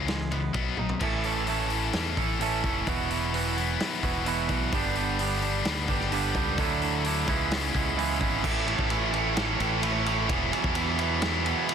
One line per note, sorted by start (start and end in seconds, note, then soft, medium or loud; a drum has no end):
0.00 0.51 C#2 medium
0.00 0.55 C#3 medium
0.08 0.30 C#3 medium
0.08 0.30 E3 medium
0.08 0.55 G#3 medium
0.08 snare loud
0.08 ride medium
0.31 0.53 C#3 medium
0.31 0.53 E3 medium
0.31 0.55 B3 medium
0.31 ride medium
0.53 0.99 B1 medium
0.53 0.76 B2 medium
0.53 1.01 B2 medium
0.53 0.76 F#3 medium
0.53 0.77 B3 medium
0.53 kick medium
0.53 ride medium
0.77 0.99 B2 medium
0.77 0.99 F#3 medium
0.77 1.02 D#4 medium
0.77 high tom medium
0.89 floor tom medium
1.00 1.90 A1 medium
1.00 1.69 A2 medium
1.00 1.48 A2 medium
1.00 1.72 E3 medium
1.00 1.47 E3 medium
1.00 1.70 A3 medium
1.00 1.26 A3 medium
1.00 1.70 C#4 medium
1.00 1.25 C#4 medium
1.00 1.69 E4 loud
1.00 1.23 A4 medium
1.00 kick loud
1.00 crash loud
1.24 1.47 A3 medium
1.24 1.48 C#4 medium
1.24 1.48 A4 medium
1.24 open hi-hat medium
1.47 2.40 E3 medium
1.47 2.18 A3 medium
1.47 2.18 C#4 medium
1.47 2.17 A4 medium
1.47 open hi-hat medium
1.70 2.38 A2 medium
1.70 2.39 E3 medium
1.70 2.40 A3 medium
1.70 2.39 C#4 medium
1.70 2.39 E4 medium
1.70 open hi-hat soft
1.93 2.16 E2 medium
1.93 snare loud
1.93 open hi-hat medium
2.17 2.61 A1 medium
2.17 2.41 A3 medium
2.17 2.41 C#4 medium
2.17 2.41 A4 medium
2.17 kick medium
2.17 open hi-hat soft
2.39 2.85 A2 medium
2.39 2.86 A2 medium
2.39 2.85 E3 medium
2.39 2.86 E3 medium
2.39 2.86 A3 medium
2.39 2.64 A3 loud
2.39 2.86 C#4 medium
2.39 2.64 C#4 loud
2.39 2.87 E4 medium
2.39 2.63 A4 loud
2.39 open hi-hat medium
2.64 2.86 F1 medium
2.64 2.87 A3 medium
2.64 2.86 C#4 medium
2.64 2.86 A4 medium
2.64 kick medium
2.64 open hi-hat soft
2.86 3.76 E1 medium
2.86 3.34 E2 medium
2.86 3.34 B2 medium
2.86 3.55 E3 medium
2.86 3.10 E3 medium
2.86 3.56 F#3 medium
2.86 3.57 B3 medium
2.86 3.11 B3 medium
2.86 3.09 E4 medium
2.86 3.54 E4 loud
2.86 3.09 F#4 loud
2.86 kick loud
2.86 open hi-hat medium
3.10 3.32 E3 medium
3.10 3.34 B3 medium
3.10 3.33 E4 medium
3.10 3.34 F#4 medium
3.10 open hi-hat medium
3.33 4.04 E3 medium
3.33 4.03 B3 medium
3.33 4.02 E4 medium
3.33 4.02 F#4 medium
3.33 open hi-hat medium
3.55 4.25 F#3 medium
3.55 4.25 B3 medium
3.55 4.24 E4 medium
3.55 open hi-hat medium
3.59 4.23 E3 medium
3.80 snare loud
3.80 open hi-hat medium
4.03 4.47 E1 medium
4.03 4.26 E3 medium
4.03 4.26 B3 medium
4.03 4.27 E4 medium
4.03 4.27 F#4 medium
4.03 kick medium
4.03 open hi-hat medium
4.25 4.71 E2 medium
4.25 4.72 B2 medium
4.25 4.71 E3 medium
4.25 4.50 E3 medium
4.25 4.71 F#3 medium
4.25 4.72 B3 medium
4.25 4.50 B3 loud
4.25 4.49 E4 loud
4.25 4.72 E4 medium
4.25 4.48 F#4 loud
4.25 open hi-hat medium
4.49 4.72 B1 medium
4.49 4.72 E3 medium
4.49 4.72 B3 medium
4.49 4.72 E4 medium
4.49 4.72 F#4 medium
4.49 kick medium
4.49 open hi-hat medium
4.72 5.62 G1 medium
4.72 5.41 G2 medium
4.72 5.19 G2 medium
4.72 5.19 D3 medium
4.72 5.41 D3 medium
4.72 4.97 G3 medium
4.72 5.42 G3 medium
4.72 4.96 B3 medium
4.72 5.42 B3 medium
4.72 4.96 D4 medium
4.72 5.41 D4 loud
4.72 4.95 G4 medium
4.72 kick loud
4.72 open hi-hat medium
4.95 5.18 G3 medium
4.95 5.19 B3 medium
4.95 5.19 D4 medium
4.95 5.20 G4 medium
4.95 open hi-hat soft
5.19 5.90 G3 medium
5.19 5.89 B3 medium
5.19 5.89 D4 medium
5.19 5.88 G4 medium
5.19 open hi-hat medium
5.42 6.09 G2 medium
5.42 6.11 D3 medium
5.42 6.11 G3 medium
5.42 6.11 B3 medium
5.42 6.11 D4 medium
5.42 open hi-hat medium
5.65 5.88 D2 medium
5.65 snare loud
5.65 open hi-hat medium
5.88 6.33 G1 medium
5.88 6.12 G3 medium
5.88 6.12 B3 medium
5.88 6.12 D4 medium
5.88 6.13 G4 medium
5.88 kick medium
5.88 open hi-hat soft
6.00 snare soft
6.10 6.56 G2 medium
6.10 6.57 G2 medium
6.10 6.56 D3 medium
6.10 6.58 D3 medium
6.10 6.57 G3 medium
6.10 6.36 G3 loud
6.10 6.36 B3 medium
6.10 6.58 B3 medium
6.10 6.35 D4 loud
6.10 6.58 D4 medium
6.10 6.34 G4 loud
6.10 open hi-hat medium
6.35 6.57 C#2 medium
6.35 6.58 G3 medium
6.35 6.58 B3 medium
6.35 6.58 D4 medium
6.35 6.57 G4 medium
6.35 kick medium
6.35 open hi-hat soft
6.57 7.24 D2 loud
6.57 7.25 D3 loud
6.57 7.05 D3 medium
6.57 7.27 F#3 loud
6.57 7.04 F#3 loud
6.57 7.27 A3 loud
6.57 6.83 A3 medium
6.57 6.82 D4 loud
6.57 7.28 D4 loud
6.57 6.81 E4 loud
6.57 kick loud
6.57 open hi-hat medium
6.82 7.05 A3 medium
6.82 7.05 D4 medium
6.82 7.05 E4 medium
6.82 open hi-hat soft
7.05 7.27 F#3 medium
7.05 7.27 A3 medium
7.05 7.28 D4 medium
7.05 7.27 E4 medium
7.05 open hi-hat medium
7.26 7.72 C#2 medium
7.26 7.95 C#3 medium
7.26 7.96 E3 medium
7.26 7.97 G#3 medium
7.26 7.75 G#3 medium
7.26 7.74 B3 medium
7.26 7.97 C#4 medium
7.26 7.73 E4 medium
7.26 kick loud
7.26 open hi-hat medium
7.30 7.95 C#3 medium
7.30 7.96 E3 medium
7.51 snare loud
7.51 open hi-hat medium
7.74 8.19 C#2 medium
7.74 7.96 G#3 medium
7.74 7.97 B3 medium
7.74 7.97 E4 medium
7.74 kick medium
7.74 open hi-hat medium
7.96 8.42 C#3 medium
7.96 8.42 C#3 loud
7.96 8.42 E3 loud
7.96 8.42 E3 medium
7.96 8.21 G#3 loud
7.96 8.43 G#3 medium
7.96 8.21 B3 loud
7.96 8.19 E4 loud
7.96 open hi-hat medium
8.00 8.43 C#4 medium
8.21 8.43 G#1 loud
8.21 8.44 G#3 medium
8.21 8.43 B3 medium
8.21 8.43 E4 medium
8.21 kick medium
8.21 open hi-hat medium
8.43 8.77 A1 medium
8.43 8.65 A2 loud
8.43 8.67 E3 medium
8.43 8.66 A3 loud
8.43 8.67 C#4 loud
8.43 8.68 E4 loud
8.43 kick loud
8.43 crash loud
8.67 8.89 A2 medium
8.67 8.90 E3 medium
8.67 8.90 A3 medium
8.67 8.90 C#4 medium
8.67 8.92 E4 medium
8.67 ride medium
8.79 9.56 A1 medium
8.79 kick medium
8.90 9.11 A2 medium
8.90 9.12 E3 medium
8.90 9.12 A3 medium
8.90 9.13 C#4 medium
8.90 9.14 E4 medium
8.90 ride medium
9.12 9.34 A2 medium
9.12 9.35 E3 medium
9.12 9.36 A3 medium
9.12 9.36 C#4 medium
9.12 9.37 E4 medium
9.12 ride medium
9.35 9.58 A2 medium
9.35 9.59 E3 medium
9.35 9.59 A3 loud
9.35 9.59 C#4 loud
9.35 9.60 E4 loud
9.35 snare loud
9.35 ride medium
9.59 10.26 A1 loud
9.59 9.80 A2 medium
9.59 9.81 E3 medium
9.59 9.82 A3 medium
9.59 9.82 C#4 medium
9.59 9.82 E4 medium
9.59 ride medium
9.81 10.04 A2 medium
9.81 10.05 E3 medium
9.81 10.05 A3 medium
9.81 10.06 C#4 medium
9.81 10.06 E4 medium
9.81 ride medium
10.05 10.28 A2 medium
10.05 10.27 E3 medium
10.05 10.28 A3 medium
10.05 10.29 C#4 medium
10.05 10.29 E4 medium
10.05 ride medium
10.28 10.51 E1 loud
10.28 10.50 E2 loud
10.28 10.51 B2 loud
10.28 10.50 E3 medium
10.28 10.51 F#3 loud
10.28 10.52 B3 loud
10.28 10.53 E4 loud
10.28 kick loud
10.28 ride loud
10.51 10.74 E2 medium
10.51 10.75 B2 medium
10.51 10.73 E3 medium
10.51 10.74 F#3 medium
10.51 10.76 B3 medium
10.51 10.75 E4 medium
10.51 ride medium
10.64 11.53 E2 medium
10.64 kick medium
10.74 10.98 E2 medium
10.74 10.99 B2 medium
10.74 10.97 E3 medium
10.74 10.99 F#3 medium
10.74 11.00 B3 medium
10.74 11.00 E4 loud
10.74 ride loud
10.99 11.22 E2 medium
10.99 11.23 B2 medium
10.99 11.20 E3 medium
10.99 11.20 F#3 medium
10.99 11.21 B3 medium
10.99 11.22 E4 medium
10.99 ride medium
11.21 11.44 E2 medium
11.21 11.45 B2 loud
11.21 11.44 E3 medium
11.21 11.45 F#3 medium
11.21 11.45 B3 loud
11.21 11.46 E4 loud
11.21 snare loud
11.21 ride medium
11.45 11.69 E2 medium
11.45 11.70 B2 medium
11.45 11.66 E3 medium
11.45 11.67 F#3 medium
11.45 11.68 B3 medium
11.45 11.68 E4 medium
11.45 ride medium
11.67 11.74 E2 medium
11.67 11.74 B2 medium
11.67 11.74 E3 medium
11.67 11.74 F#3 medium
11.67 11.74 B3 medium
11.67 11.74 E4 loud
11.67 ride loud
11.71 11.74 E3 loud